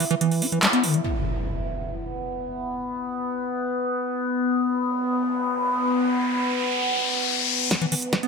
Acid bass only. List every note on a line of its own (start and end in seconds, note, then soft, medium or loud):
0.00 0.05 E3 medium
0.11 0.15 E3 loud
0.21 0.43 E3 medium
0.42 0.46 E4 medium
0.52 0.59 E3 medium
0.63 0.67 G3 medium
0.73 0.85 B3 loud
0.84 0.95 D3 medium
0.94 1.01 E3 medium
7.71 7.76 E3 medium
7.81 7.86 E3 loud
7.92 7.95 E3 medium
8.13 8.15 E3 loud
8.23 8.28 B3 medium